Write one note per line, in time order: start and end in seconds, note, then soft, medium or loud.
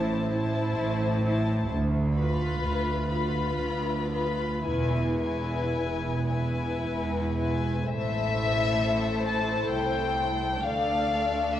0.00 0.67 A1 medium
0.00 0.67 A2 medium
0.00 0.28 E4 medium
0.00 0.29 C5 medium
0.00 0.28 A5 medium
0.30 1.22 E4 medium
0.30 1.22 C5 medium
0.30 1.23 A5 medium
0.77 1.60 A1 medium
0.77 1.60 A2 loud
1.24 1.70 E4 medium
1.24 1.70 C5 medium
1.24 1.70 A5 medium
1.71 2.52 D2 loud
2.15 3.08 F4 medium
2.15 3.08 B4 medium
2.15 3.08 B5 medium
2.63 3.48 D2 medium
3.10 4.09 F4 medium
3.10 4.09 B4 medium
3.10 4.09 B5 medium
3.60 4.52 D2 medium
4.11 4.64 F4 medium
4.11 4.63 B4 medium
4.11 4.65 B5 medium
4.64 5.61 E1 medium
4.64 5.62 E2 medium
4.64 5.17 E4 medium
4.64 5.18 B4 medium
4.64 5.19 G#5 medium
5.18 6.26 E4 medium
5.18 6.26 B4 medium
5.18 6.27 G#5 medium
5.74 6.70 E1 medium
5.74 6.70 E2 medium
6.28 7.35 E4 medium
6.28 7.35 B4 medium
6.28 7.36 G#5 medium
6.83 7.78 E1 medium
6.83 7.78 E2 medium
7.37 7.87 E4 medium
7.37 7.88 B4 medium
7.37 7.89 G#5 medium
7.88 9.68 A1 medium
7.88 9.68 A2 medium
7.88 10.57 A3 medium
7.88 10.57 E4 medium
7.88 10.58 A4 medium
7.88 10.58 C5 medium
7.88 9.23 E5 loud
9.29 9.73 A5 medium
9.71 10.60 C2 medium
9.71 10.60 G5 medium
10.61 11.60 D2 medium
10.61 11.60 A3 medium
10.61 11.60 D4 medium
10.61 11.60 A4 medium
10.61 11.60 D5 medium
10.61 11.51 F5 medium
11.52 11.60 E5 medium